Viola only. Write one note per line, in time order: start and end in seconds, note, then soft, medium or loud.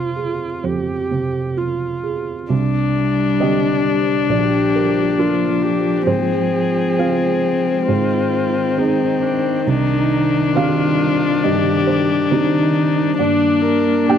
0.00 0.66 F4 soft
0.65 1.59 G4 soft
1.58 2.51 F4 soft
4.30 5.20 G4 medium
5.19 5.63 F4 soft
5.62 6.09 G4 soft
6.07 7.88 G#4 medium
7.89 8.80 F4 medium
8.78 9.24 D#4 soft
9.22 9.66 D4 soft
9.67 10.54 D#4 medium
10.57 11.45 F4 medium
11.44 12.32 G4 medium
12.31 13.17 D#4 medium
13.18 13.63 D4 medium
13.61 14.08 A#4 medium
14.07 14.18 G4 medium